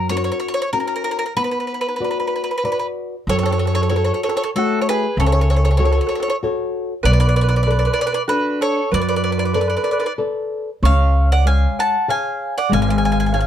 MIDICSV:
0, 0, Header, 1, 5, 480
1, 0, Start_track
1, 0, Key_signature, 2, "minor"
1, 0, Tempo, 635593
1, 1028, Time_signature, 3, 2, 24, 8
1, 2468, Key_signature, 3, "minor"
1, 3432, Tempo, 628272
1, 10250, End_track
2, 0, Start_track
2, 0, Title_t, "Mandolin"
2, 0, Program_c, 0, 25
2, 71, Note_on_c, 0, 73, 94
2, 117, Note_off_c, 0, 73, 0
2, 126, Note_on_c, 0, 73, 70
2, 174, Note_off_c, 0, 73, 0
2, 183, Note_on_c, 0, 73, 63
2, 230, Note_off_c, 0, 73, 0
2, 239, Note_on_c, 0, 73, 65
2, 290, Note_off_c, 0, 73, 0
2, 299, Note_on_c, 0, 73, 70
2, 353, Note_off_c, 0, 73, 0
2, 365, Note_on_c, 0, 73, 70
2, 398, Note_off_c, 0, 73, 0
2, 407, Note_on_c, 0, 73, 85
2, 457, Note_off_c, 0, 73, 0
2, 466, Note_on_c, 0, 73, 78
2, 517, Note_off_c, 0, 73, 0
2, 549, Note_on_c, 0, 70, 76
2, 594, Note_off_c, 0, 70, 0
2, 603, Note_on_c, 0, 70, 53
2, 651, Note_off_c, 0, 70, 0
2, 660, Note_on_c, 0, 70, 61
2, 714, Note_off_c, 0, 70, 0
2, 723, Note_on_c, 0, 70, 70
2, 778, Note_off_c, 0, 70, 0
2, 786, Note_on_c, 0, 70, 73
2, 831, Note_off_c, 0, 70, 0
2, 840, Note_on_c, 0, 70, 64
2, 887, Note_off_c, 0, 70, 0
2, 896, Note_on_c, 0, 70, 74
2, 941, Note_off_c, 0, 70, 0
2, 950, Note_on_c, 0, 70, 52
2, 999, Note_off_c, 0, 70, 0
2, 1032, Note_on_c, 0, 71, 89
2, 1080, Note_off_c, 0, 71, 0
2, 1089, Note_on_c, 0, 71, 66
2, 1134, Note_off_c, 0, 71, 0
2, 1143, Note_on_c, 0, 71, 58
2, 1198, Note_off_c, 0, 71, 0
2, 1208, Note_on_c, 0, 71, 49
2, 1253, Note_off_c, 0, 71, 0
2, 1262, Note_on_c, 0, 71, 47
2, 1307, Note_off_c, 0, 71, 0
2, 1316, Note_on_c, 0, 71, 50
2, 1358, Note_off_c, 0, 71, 0
2, 1367, Note_on_c, 0, 71, 66
2, 1415, Note_off_c, 0, 71, 0
2, 1424, Note_on_c, 0, 71, 41
2, 1471, Note_off_c, 0, 71, 0
2, 1480, Note_on_c, 0, 71, 51
2, 1531, Note_off_c, 0, 71, 0
2, 1544, Note_on_c, 0, 71, 42
2, 1582, Note_off_c, 0, 71, 0
2, 1591, Note_on_c, 0, 71, 50
2, 1646, Note_off_c, 0, 71, 0
2, 1658, Note_on_c, 0, 71, 46
2, 1709, Note_off_c, 0, 71, 0
2, 1717, Note_on_c, 0, 71, 45
2, 1767, Note_off_c, 0, 71, 0
2, 1779, Note_on_c, 0, 71, 47
2, 1824, Note_off_c, 0, 71, 0
2, 1841, Note_on_c, 0, 71, 55
2, 1882, Note_off_c, 0, 71, 0
2, 1895, Note_on_c, 0, 71, 45
2, 1937, Note_off_c, 0, 71, 0
2, 1946, Note_on_c, 0, 71, 64
2, 1989, Note_off_c, 0, 71, 0
2, 2053, Note_on_c, 0, 71, 57
2, 2101, Note_off_c, 0, 71, 0
2, 2110, Note_on_c, 0, 71, 50
2, 2161, Note_off_c, 0, 71, 0
2, 2488, Note_on_c, 0, 73, 101
2, 2533, Note_off_c, 0, 73, 0
2, 2558, Note_on_c, 0, 73, 71
2, 2598, Note_off_c, 0, 73, 0
2, 2610, Note_on_c, 0, 73, 67
2, 2653, Note_off_c, 0, 73, 0
2, 2661, Note_on_c, 0, 73, 59
2, 2705, Note_off_c, 0, 73, 0
2, 2714, Note_on_c, 0, 73, 60
2, 2761, Note_off_c, 0, 73, 0
2, 2773, Note_on_c, 0, 73, 62
2, 2817, Note_off_c, 0, 73, 0
2, 2831, Note_on_c, 0, 73, 77
2, 2874, Note_off_c, 0, 73, 0
2, 2891, Note_on_c, 0, 73, 46
2, 2931, Note_off_c, 0, 73, 0
2, 2941, Note_on_c, 0, 73, 57
2, 2982, Note_off_c, 0, 73, 0
2, 2991, Note_on_c, 0, 73, 50
2, 3041, Note_off_c, 0, 73, 0
2, 3055, Note_on_c, 0, 73, 57
2, 3102, Note_off_c, 0, 73, 0
2, 3128, Note_on_c, 0, 73, 55
2, 3168, Note_off_c, 0, 73, 0
2, 3197, Note_on_c, 0, 73, 69
2, 3232, Note_off_c, 0, 73, 0
2, 3243, Note_on_c, 0, 73, 58
2, 3280, Note_off_c, 0, 73, 0
2, 3299, Note_on_c, 0, 73, 77
2, 3335, Note_off_c, 0, 73, 0
2, 3349, Note_on_c, 0, 73, 72
2, 3387, Note_off_c, 0, 73, 0
2, 3442, Note_on_c, 0, 69, 80
2, 3619, Note_off_c, 0, 69, 0
2, 3639, Note_on_c, 0, 73, 64
2, 3687, Note_off_c, 0, 73, 0
2, 3695, Note_on_c, 0, 71, 98
2, 3926, Note_off_c, 0, 71, 0
2, 3931, Note_on_c, 0, 73, 89
2, 3973, Note_off_c, 0, 73, 0
2, 3982, Note_on_c, 0, 73, 63
2, 4017, Note_off_c, 0, 73, 0
2, 4027, Note_on_c, 0, 73, 69
2, 4082, Note_off_c, 0, 73, 0
2, 4095, Note_on_c, 0, 73, 63
2, 4146, Note_off_c, 0, 73, 0
2, 4162, Note_on_c, 0, 73, 66
2, 4202, Note_off_c, 0, 73, 0
2, 4211, Note_on_c, 0, 73, 61
2, 4257, Note_off_c, 0, 73, 0
2, 4275, Note_on_c, 0, 73, 65
2, 4311, Note_off_c, 0, 73, 0
2, 4320, Note_on_c, 0, 73, 48
2, 4361, Note_off_c, 0, 73, 0
2, 4370, Note_on_c, 0, 73, 62
2, 4419, Note_off_c, 0, 73, 0
2, 4432, Note_on_c, 0, 73, 50
2, 4477, Note_off_c, 0, 73, 0
2, 4487, Note_on_c, 0, 73, 50
2, 4537, Note_off_c, 0, 73, 0
2, 4551, Note_on_c, 0, 73, 47
2, 4598, Note_off_c, 0, 73, 0
2, 4610, Note_on_c, 0, 73, 59
2, 4652, Note_off_c, 0, 73, 0
2, 4661, Note_on_c, 0, 73, 51
2, 4707, Note_off_c, 0, 73, 0
2, 4716, Note_on_c, 0, 73, 66
2, 4761, Note_off_c, 0, 73, 0
2, 4770, Note_on_c, 0, 73, 62
2, 4815, Note_off_c, 0, 73, 0
2, 5349, Note_on_c, 0, 74, 108
2, 5399, Note_off_c, 0, 74, 0
2, 5408, Note_on_c, 0, 74, 81
2, 5450, Note_off_c, 0, 74, 0
2, 5460, Note_on_c, 0, 74, 90
2, 5515, Note_off_c, 0, 74, 0
2, 5527, Note_on_c, 0, 74, 70
2, 5575, Note_off_c, 0, 74, 0
2, 5585, Note_on_c, 0, 74, 71
2, 5614, Note_off_c, 0, 74, 0
2, 5623, Note_on_c, 0, 74, 65
2, 5670, Note_off_c, 0, 74, 0
2, 5679, Note_on_c, 0, 74, 67
2, 5728, Note_off_c, 0, 74, 0
2, 5737, Note_on_c, 0, 74, 53
2, 5779, Note_off_c, 0, 74, 0
2, 5788, Note_on_c, 0, 74, 61
2, 5837, Note_off_c, 0, 74, 0
2, 5847, Note_on_c, 0, 74, 55
2, 5901, Note_off_c, 0, 74, 0
2, 5910, Note_on_c, 0, 74, 56
2, 5949, Note_off_c, 0, 74, 0
2, 5958, Note_on_c, 0, 74, 53
2, 6013, Note_off_c, 0, 74, 0
2, 6022, Note_on_c, 0, 74, 72
2, 6072, Note_off_c, 0, 74, 0
2, 6081, Note_on_c, 0, 74, 72
2, 6114, Note_off_c, 0, 74, 0
2, 6123, Note_on_c, 0, 74, 74
2, 6172, Note_off_c, 0, 74, 0
2, 6181, Note_on_c, 0, 74, 76
2, 6236, Note_off_c, 0, 74, 0
2, 6294, Note_on_c, 0, 71, 83
2, 6528, Note_off_c, 0, 71, 0
2, 6546, Note_on_c, 0, 73, 93
2, 6762, Note_off_c, 0, 73, 0
2, 6790, Note_on_c, 0, 74, 99
2, 6838, Note_off_c, 0, 74, 0
2, 6847, Note_on_c, 0, 74, 64
2, 6892, Note_off_c, 0, 74, 0
2, 6901, Note_on_c, 0, 74, 68
2, 6951, Note_off_c, 0, 74, 0
2, 6960, Note_on_c, 0, 74, 61
2, 7008, Note_off_c, 0, 74, 0
2, 7017, Note_on_c, 0, 74, 59
2, 7067, Note_off_c, 0, 74, 0
2, 7082, Note_on_c, 0, 74, 51
2, 7127, Note_off_c, 0, 74, 0
2, 7135, Note_on_c, 0, 74, 63
2, 7174, Note_off_c, 0, 74, 0
2, 7183, Note_on_c, 0, 74, 44
2, 7231, Note_off_c, 0, 74, 0
2, 7251, Note_on_c, 0, 74, 55
2, 7295, Note_off_c, 0, 74, 0
2, 7303, Note_on_c, 0, 74, 52
2, 7351, Note_off_c, 0, 74, 0
2, 7367, Note_on_c, 0, 74, 53
2, 7413, Note_off_c, 0, 74, 0
2, 7420, Note_on_c, 0, 74, 46
2, 7468, Note_off_c, 0, 74, 0
2, 7478, Note_on_c, 0, 74, 51
2, 7523, Note_off_c, 0, 74, 0
2, 7532, Note_on_c, 0, 74, 50
2, 7579, Note_off_c, 0, 74, 0
2, 7597, Note_on_c, 0, 74, 52
2, 7639, Note_off_c, 0, 74, 0
2, 7646, Note_on_c, 0, 74, 64
2, 7690, Note_off_c, 0, 74, 0
2, 8251, Note_on_c, 0, 77, 104
2, 8582, Note_off_c, 0, 77, 0
2, 8608, Note_on_c, 0, 78, 88
2, 8711, Note_off_c, 0, 78, 0
2, 8722, Note_on_c, 0, 80, 83
2, 8972, Note_off_c, 0, 80, 0
2, 8975, Note_on_c, 0, 81, 88
2, 9204, Note_off_c, 0, 81, 0
2, 9207, Note_on_c, 0, 80, 95
2, 9565, Note_off_c, 0, 80, 0
2, 9569, Note_on_c, 0, 78, 80
2, 9671, Note_off_c, 0, 78, 0
2, 9687, Note_on_c, 0, 80, 91
2, 9735, Note_off_c, 0, 80, 0
2, 9754, Note_on_c, 0, 80, 70
2, 9798, Note_off_c, 0, 80, 0
2, 9818, Note_on_c, 0, 80, 83
2, 9859, Note_off_c, 0, 80, 0
2, 9877, Note_on_c, 0, 80, 62
2, 9918, Note_off_c, 0, 80, 0
2, 9931, Note_on_c, 0, 80, 74
2, 9971, Note_off_c, 0, 80, 0
2, 9983, Note_on_c, 0, 80, 67
2, 10023, Note_off_c, 0, 80, 0
2, 10044, Note_on_c, 0, 80, 70
2, 10081, Note_off_c, 0, 80, 0
2, 10093, Note_on_c, 0, 80, 54
2, 10132, Note_off_c, 0, 80, 0
2, 10151, Note_on_c, 0, 80, 64
2, 10190, Note_off_c, 0, 80, 0
2, 10202, Note_on_c, 0, 80, 55
2, 10243, Note_off_c, 0, 80, 0
2, 10250, End_track
3, 0, Start_track
3, 0, Title_t, "Mandolin"
3, 0, Program_c, 1, 25
3, 2487, Note_on_c, 1, 69, 82
3, 2527, Note_off_c, 1, 69, 0
3, 2536, Note_on_c, 1, 69, 59
3, 2582, Note_off_c, 1, 69, 0
3, 2592, Note_on_c, 1, 69, 70
3, 2643, Note_off_c, 1, 69, 0
3, 2654, Note_on_c, 1, 69, 53
3, 2696, Note_off_c, 1, 69, 0
3, 2705, Note_on_c, 1, 69, 48
3, 2750, Note_off_c, 1, 69, 0
3, 2759, Note_on_c, 1, 69, 51
3, 2809, Note_off_c, 1, 69, 0
3, 2824, Note_on_c, 1, 69, 53
3, 2870, Note_off_c, 1, 69, 0
3, 2883, Note_on_c, 1, 69, 51
3, 2927, Note_off_c, 1, 69, 0
3, 2954, Note_on_c, 1, 69, 51
3, 2990, Note_off_c, 1, 69, 0
3, 2999, Note_on_c, 1, 69, 53
3, 3045, Note_off_c, 1, 69, 0
3, 3060, Note_on_c, 1, 69, 52
3, 3105, Note_off_c, 1, 69, 0
3, 3122, Note_on_c, 1, 69, 51
3, 3165, Note_off_c, 1, 69, 0
3, 3199, Note_on_c, 1, 69, 55
3, 3230, Note_off_c, 1, 69, 0
3, 3239, Note_on_c, 1, 69, 57
3, 3278, Note_off_c, 1, 69, 0
3, 3294, Note_on_c, 1, 69, 61
3, 3332, Note_off_c, 1, 69, 0
3, 3355, Note_on_c, 1, 69, 58
3, 3390, Note_off_c, 1, 69, 0
3, 3459, Note_on_c, 1, 66, 66
3, 3627, Note_off_c, 1, 66, 0
3, 3637, Note_on_c, 1, 69, 51
3, 3683, Note_off_c, 1, 69, 0
3, 3702, Note_on_c, 1, 68, 68
3, 3907, Note_off_c, 1, 68, 0
3, 3933, Note_on_c, 1, 69, 73
3, 3978, Note_off_c, 1, 69, 0
3, 3986, Note_on_c, 1, 69, 49
3, 4033, Note_off_c, 1, 69, 0
3, 4044, Note_on_c, 1, 69, 54
3, 4091, Note_off_c, 1, 69, 0
3, 4111, Note_on_c, 1, 69, 42
3, 4154, Note_off_c, 1, 69, 0
3, 4167, Note_on_c, 1, 69, 47
3, 4208, Note_off_c, 1, 69, 0
3, 4219, Note_on_c, 1, 69, 46
3, 4261, Note_off_c, 1, 69, 0
3, 4270, Note_on_c, 1, 69, 54
3, 4314, Note_off_c, 1, 69, 0
3, 4327, Note_on_c, 1, 69, 43
3, 4369, Note_off_c, 1, 69, 0
3, 4383, Note_on_c, 1, 69, 48
3, 4416, Note_off_c, 1, 69, 0
3, 4425, Note_on_c, 1, 69, 48
3, 4470, Note_off_c, 1, 69, 0
3, 4479, Note_on_c, 1, 69, 58
3, 4516, Note_off_c, 1, 69, 0
3, 4525, Note_on_c, 1, 69, 48
3, 4584, Note_off_c, 1, 69, 0
3, 4594, Note_on_c, 1, 69, 57
3, 4621, Note_off_c, 1, 69, 0
3, 4630, Note_on_c, 1, 69, 46
3, 4687, Note_off_c, 1, 69, 0
3, 4696, Note_on_c, 1, 69, 55
3, 4751, Note_off_c, 1, 69, 0
3, 4759, Note_on_c, 1, 69, 47
3, 4809, Note_off_c, 1, 69, 0
3, 5331, Note_on_c, 1, 71, 96
3, 5387, Note_off_c, 1, 71, 0
3, 5396, Note_on_c, 1, 71, 73
3, 5454, Note_off_c, 1, 71, 0
3, 5465, Note_on_c, 1, 71, 71
3, 5509, Note_off_c, 1, 71, 0
3, 5518, Note_on_c, 1, 71, 45
3, 5573, Note_off_c, 1, 71, 0
3, 5581, Note_on_c, 1, 71, 61
3, 5631, Note_off_c, 1, 71, 0
3, 5639, Note_on_c, 1, 71, 55
3, 5679, Note_off_c, 1, 71, 0
3, 5688, Note_on_c, 1, 71, 60
3, 5732, Note_off_c, 1, 71, 0
3, 5741, Note_on_c, 1, 71, 53
3, 5791, Note_off_c, 1, 71, 0
3, 5817, Note_on_c, 1, 71, 51
3, 5845, Note_off_c, 1, 71, 0
3, 5854, Note_on_c, 1, 71, 44
3, 5907, Note_off_c, 1, 71, 0
3, 5915, Note_on_c, 1, 71, 51
3, 5963, Note_off_c, 1, 71, 0
3, 5972, Note_on_c, 1, 71, 60
3, 6007, Note_off_c, 1, 71, 0
3, 6017, Note_on_c, 1, 71, 63
3, 6066, Note_off_c, 1, 71, 0
3, 6075, Note_on_c, 1, 71, 58
3, 6109, Note_off_c, 1, 71, 0
3, 6119, Note_on_c, 1, 71, 70
3, 6159, Note_off_c, 1, 71, 0
3, 6168, Note_on_c, 1, 71, 56
3, 6229, Note_off_c, 1, 71, 0
3, 6284, Note_on_c, 1, 66, 63
3, 6523, Note_off_c, 1, 66, 0
3, 6539, Note_on_c, 1, 69, 73
3, 6759, Note_off_c, 1, 69, 0
3, 6772, Note_on_c, 1, 71, 74
3, 6824, Note_off_c, 1, 71, 0
3, 6833, Note_on_c, 1, 71, 46
3, 6890, Note_off_c, 1, 71, 0
3, 6907, Note_on_c, 1, 71, 56
3, 6952, Note_off_c, 1, 71, 0
3, 6961, Note_on_c, 1, 71, 44
3, 7008, Note_off_c, 1, 71, 0
3, 7017, Note_on_c, 1, 71, 44
3, 7062, Note_off_c, 1, 71, 0
3, 7071, Note_on_c, 1, 71, 43
3, 7114, Note_off_c, 1, 71, 0
3, 7124, Note_on_c, 1, 71, 43
3, 7167, Note_off_c, 1, 71, 0
3, 7176, Note_on_c, 1, 71, 41
3, 7227, Note_off_c, 1, 71, 0
3, 7243, Note_on_c, 1, 71, 46
3, 7283, Note_off_c, 1, 71, 0
3, 7293, Note_on_c, 1, 71, 37
3, 7342, Note_off_c, 1, 71, 0
3, 7351, Note_on_c, 1, 71, 49
3, 7404, Note_off_c, 1, 71, 0
3, 7427, Note_on_c, 1, 71, 46
3, 7463, Note_off_c, 1, 71, 0
3, 7472, Note_on_c, 1, 71, 53
3, 7522, Note_off_c, 1, 71, 0
3, 7543, Note_on_c, 1, 71, 50
3, 7584, Note_off_c, 1, 71, 0
3, 7603, Note_on_c, 1, 71, 58
3, 7630, Note_off_c, 1, 71, 0
3, 7639, Note_on_c, 1, 71, 46
3, 7687, Note_off_c, 1, 71, 0
3, 8236, Note_on_c, 1, 73, 73
3, 8574, Note_off_c, 1, 73, 0
3, 8613, Note_on_c, 1, 74, 65
3, 8713, Note_off_c, 1, 74, 0
3, 8721, Note_on_c, 1, 77, 71
3, 8950, Note_off_c, 1, 77, 0
3, 8969, Note_on_c, 1, 78, 80
3, 9181, Note_off_c, 1, 78, 0
3, 9199, Note_on_c, 1, 77, 65
3, 9535, Note_off_c, 1, 77, 0
3, 9572, Note_on_c, 1, 74, 71
3, 9673, Note_off_c, 1, 74, 0
3, 9695, Note_on_c, 1, 77, 95
3, 9739, Note_off_c, 1, 77, 0
3, 9750, Note_on_c, 1, 77, 50
3, 9795, Note_off_c, 1, 77, 0
3, 9805, Note_on_c, 1, 77, 56
3, 9852, Note_off_c, 1, 77, 0
3, 9872, Note_on_c, 1, 77, 42
3, 9915, Note_off_c, 1, 77, 0
3, 9932, Note_on_c, 1, 77, 54
3, 9971, Note_off_c, 1, 77, 0
3, 9990, Note_on_c, 1, 77, 54
3, 10027, Note_off_c, 1, 77, 0
3, 10046, Note_on_c, 1, 77, 57
3, 10082, Note_off_c, 1, 77, 0
3, 10112, Note_on_c, 1, 77, 45
3, 10131, Note_off_c, 1, 77, 0
3, 10141, Note_on_c, 1, 77, 56
3, 10181, Note_off_c, 1, 77, 0
3, 10191, Note_on_c, 1, 77, 42
3, 10240, Note_off_c, 1, 77, 0
3, 10250, End_track
4, 0, Start_track
4, 0, Title_t, "Nylon-string guitar"
4, 0, Program_c, 2, 24
4, 78, Note_on_c, 2, 61, 40
4, 82, Note_on_c, 2, 66, 34
4, 85, Note_on_c, 2, 70, 47
4, 457, Note_off_c, 2, 61, 0
4, 460, Note_off_c, 2, 66, 0
4, 462, Note_off_c, 2, 70, 0
4, 550, Note_on_c, 2, 61, 45
4, 556, Note_on_c, 2, 66, 36
4, 557, Note_on_c, 2, 70, 50
4, 933, Note_off_c, 2, 61, 0
4, 935, Note_off_c, 2, 66, 0
4, 937, Note_off_c, 2, 70, 0
4, 1032, Note_on_c, 2, 59, 61
4, 1493, Note_off_c, 2, 59, 0
4, 1513, Note_on_c, 2, 66, 46
4, 1519, Note_on_c, 2, 71, 36
4, 1522, Note_on_c, 2, 74, 46
4, 1895, Note_off_c, 2, 66, 0
4, 1896, Note_off_c, 2, 71, 0
4, 1900, Note_off_c, 2, 74, 0
4, 1992, Note_on_c, 2, 66, 43
4, 1998, Note_on_c, 2, 71, 37
4, 1999, Note_on_c, 2, 74, 39
4, 2375, Note_off_c, 2, 66, 0
4, 2379, Note_off_c, 2, 71, 0
4, 2379, Note_off_c, 2, 74, 0
4, 2481, Note_on_c, 2, 54, 50
4, 2943, Note_off_c, 2, 54, 0
4, 2955, Note_on_c, 2, 66, 41
4, 2965, Note_on_c, 2, 69, 40
4, 2967, Note_on_c, 2, 73, 51
4, 3338, Note_off_c, 2, 66, 0
4, 3344, Note_off_c, 2, 69, 0
4, 3344, Note_off_c, 2, 73, 0
4, 3441, Note_on_c, 2, 57, 46
4, 3444, Note_on_c, 2, 66, 49
4, 3446, Note_on_c, 2, 73, 52
4, 3822, Note_off_c, 2, 57, 0
4, 3823, Note_off_c, 2, 66, 0
4, 3824, Note_off_c, 2, 73, 0
4, 3916, Note_on_c, 2, 49, 58
4, 4379, Note_off_c, 2, 49, 0
4, 4386, Note_on_c, 2, 66, 48
4, 4390, Note_on_c, 2, 69, 43
4, 4393, Note_on_c, 2, 73, 55
4, 4771, Note_off_c, 2, 66, 0
4, 4772, Note_off_c, 2, 69, 0
4, 4772, Note_off_c, 2, 73, 0
4, 4871, Note_on_c, 2, 66, 50
4, 4878, Note_on_c, 2, 69, 41
4, 4880, Note_on_c, 2, 73, 54
4, 5252, Note_off_c, 2, 66, 0
4, 5254, Note_off_c, 2, 69, 0
4, 5257, Note_off_c, 2, 73, 0
4, 5341, Note_on_c, 2, 59, 65
4, 5806, Note_off_c, 2, 59, 0
4, 5821, Note_on_c, 2, 69, 43
4, 5822, Note_on_c, 2, 71, 44
4, 5826, Note_on_c, 2, 74, 53
4, 6204, Note_off_c, 2, 69, 0
4, 6204, Note_off_c, 2, 71, 0
4, 6207, Note_off_c, 2, 74, 0
4, 6286, Note_on_c, 2, 69, 45
4, 6288, Note_on_c, 2, 71, 45
4, 6290, Note_on_c, 2, 62, 49
4, 6675, Note_off_c, 2, 71, 0
4, 6676, Note_off_c, 2, 69, 0
4, 6678, Note_off_c, 2, 62, 0
4, 6773, Note_on_c, 2, 54, 62
4, 7243, Note_off_c, 2, 54, 0
4, 7258, Note_on_c, 2, 69, 51
4, 7260, Note_on_c, 2, 71, 42
4, 7263, Note_on_c, 2, 74, 51
4, 7645, Note_off_c, 2, 69, 0
4, 7645, Note_off_c, 2, 71, 0
4, 7648, Note_off_c, 2, 74, 0
4, 7738, Note_on_c, 2, 69, 43
4, 7741, Note_on_c, 2, 71, 40
4, 7744, Note_on_c, 2, 74, 51
4, 8128, Note_off_c, 2, 71, 0
4, 8129, Note_off_c, 2, 69, 0
4, 8132, Note_off_c, 2, 74, 0
4, 8238, Note_on_c, 2, 61, 61
4, 8703, Note_off_c, 2, 61, 0
4, 8709, Note_on_c, 2, 56, 38
4, 8714, Note_on_c, 2, 73, 41
4, 9096, Note_off_c, 2, 56, 0
4, 9098, Note_off_c, 2, 73, 0
4, 9192, Note_on_c, 2, 68, 45
4, 9197, Note_on_c, 2, 77, 43
4, 9198, Note_on_c, 2, 73, 39
4, 9577, Note_off_c, 2, 68, 0
4, 9578, Note_off_c, 2, 73, 0
4, 9579, Note_off_c, 2, 77, 0
4, 9659, Note_on_c, 2, 56, 62
4, 10130, Note_off_c, 2, 56, 0
4, 10151, Note_on_c, 2, 73, 44
4, 10154, Note_on_c, 2, 68, 45
4, 10159, Note_on_c, 2, 77, 49
4, 10250, Note_off_c, 2, 68, 0
4, 10250, Note_off_c, 2, 73, 0
4, 10250, Note_off_c, 2, 77, 0
4, 10250, End_track
5, 0, Start_track
5, 0, Title_t, "Upright bass"
5, 0, Program_c, 3, 32
5, 0, Note_on_c, 3, 42, 75
5, 217, Note_off_c, 3, 42, 0
5, 2469, Note_on_c, 3, 42, 87
5, 3095, Note_off_c, 3, 42, 0
5, 3910, Note_on_c, 3, 37, 89
5, 4533, Note_off_c, 3, 37, 0
5, 5338, Note_on_c, 3, 35, 90
5, 5961, Note_off_c, 3, 35, 0
5, 6781, Note_on_c, 3, 42, 78
5, 7406, Note_off_c, 3, 42, 0
5, 8231, Note_on_c, 3, 37, 98
5, 8857, Note_off_c, 3, 37, 0
5, 9678, Note_on_c, 3, 32, 92
5, 10250, Note_off_c, 3, 32, 0
5, 10250, End_track
0, 0, End_of_file